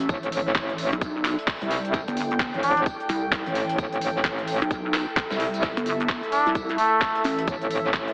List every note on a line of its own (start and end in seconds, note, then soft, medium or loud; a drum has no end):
0.00 8.13 A3 medium
0.00 8.13 E4 medium
0.00 8.13 A4 loud
0.00 1.33 E5 medium
0.00 closed hi-hat medium
0.00 closed hi-hat soft
0.09 0.54 A1 loud
0.09 3.77 D5 medium
0.09 kick loud
0.09 closed hi-hat medium
0.09 tambourine medium
0.23 closed hi-hat medium
0.32 open hi-hat loud
0.32 tambourine medium
0.46 snare soft
0.55 0.90 A1 loud
0.55 kick loud
0.55 snare loud
0.55 clap loud
0.55 closed hi-hat medium
0.55 tambourine medium
0.69 closed hi-hat soft
0.78 open hi-hat loud
0.78 tambourine medium
0.93 1.36 B1 medium
0.93 closed hi-hat soft
1.01 kick loud
1.01 closed hi-hat medium
1.01 tambourine medium
1.25 clap medium
1.25 open hi-hat loud
1.25 tambourine medium
1.30 5.02 G5 medium
1.39 closed hi-hat soft
1.48 kick loud
1.48 snare loud
1.48 clap loud
1.48 closed hi-hat medium
1.48 open hi-hat medium
1.61 2.06 C2 loud
1.61 closed hi-hat soft
1.71 snare soft
1.71 open hi-hat loud
1.71 tambourine medium
1.85 closed hi-hat medium
1.94 kick loud
1.94 closed hi-hat medium
1.94 tambourine medium
2.08 2.52 G1 loud
2.08 closed hi-hat medium
2.17 open hi-hat loud
2.17 tambourine medium
2.31 closed hi-hat soft
2.40 kick loud
2.40 snare loud
2.40 clap loud
2.40 closed hi-hat medium
2.40 tambourine loud
2.54 2.85 A1 loud
2.54 closed hi-hat soft
2.63 2.82 D4 medium
2.63 open hi-hat loud
2.63 tambourine medium
2.77 closed hi-hat soft
2.86 kick loud
2.86 closed hi-hat medium
2.86 tambourine medium
3.00 closed hi-hat soft
3.09 3.44 C2 loud
3.09 open hi-hat loud
3.09 tambourine medium
3.32 kick loud
3.32 snare loud
3.32 clap loud
3.32 closed hi-hat medium
3.32 tambourine medium
3.46 3.77 A1 loud
3.46 closed hi-hat soft
3.55 snare soft
3.55 open hi-hat loud
3.55 tambourine medium
3.69 closed hi-hat medium
3.69 closed hi-hat soft
3.78 4.23 A1 loud
3.78 7.47 E5 medium
3.78 kick loud
3.78 closed hi-hat medium
3.78 tambourine medium
3.93 closed hi-hat medium
4.01 open hi-hat loud
4.01 tambourine medium
4.16 snare soft
4.24 4.60 A1 loud
4.24 kick loud
4.24 snare loud
4.24 clap loud
4.24 closed hi-hat medium
4.24 tambourine medium
4.39 closed hi-hat soft
4.48 open hi-hat loud
4.48 tambourine medium
4.62 5.06 B1 medium
4.62 closed hi-hat soft
4.71 kick loud
4.71 closed hi-hat medium
4.71 tambourine medium
4.93 snare loud
4.93 clap medium
4.93 open hi-hat loud
4.93 tambourine medium
5.00 8.13 E5 medium
5.17 kick loud
5.17 clap loud
5.17 closed hi-hat medium
5.17 tambourine medium
5.31 5.75 C2 loud
5.31 snare loud
5.31 closed hi-hat soft
5.31 tambourine medium
5.40 open hi-hat loud
5.54 closed hi-hat medium
5.54 tambourine medium
5.63 kick loud
5.63 snare loud
5.63 closed hi-hat medium
5.63 tambourine medium
5.77 6.21 G1 loud
5.77 closed hi-hat medium
5.86 open hi-hat loud
5.86 tambourine medium
6.00 closed hi-hat soft
6.09 kick loud
6.09 snare loud
6.09 clap loud
6.09 closed hi-hat medium
6.09 tambourine loud
6.23 closed hi-hat soft
6.32 6.51 D4 loud
6.32 open hi-hat loud
6.32 tambourine medium
6.46 6.77 C2 loud
6.46 closed hi-hat soft
6.55 kick loud
6.55 closed hi-hat medium
6.55 tambourine medium
6.69 closed hi-hat soft
6.78 7.25 A3 loud
6.78 open hi-hat loud
6.78 tambourine medium
7.01 kick loud
7.01 snare loud
7.01 clap loud
7.01 closed hi-hat medium
7.01 tambourine medium
7.15 closed hi-hat soft
7.24 7.46 A1 loud
7.24 snare soft
7.24 open hi-hat loud
7.24 tambourine medium
7.39 closed hi-hat medium
7.39 closed hi-hat soft
7.48 7.92 A1 loud
7.48 kick loud
7.48 closed hi-hat medium
7.48 tambourine medium
7.62 closed hi-hat medium
7.71 open hi-hat loud
7.71 tambourine medium
7.85 snare soft
7.93 8.13 A1 loud
7.93 kick loud
7.93 snare loud
7.93 clap loud
7.93 closed hi-hat medium
7.93 tambourine medium
8.08 closed hi-hat soft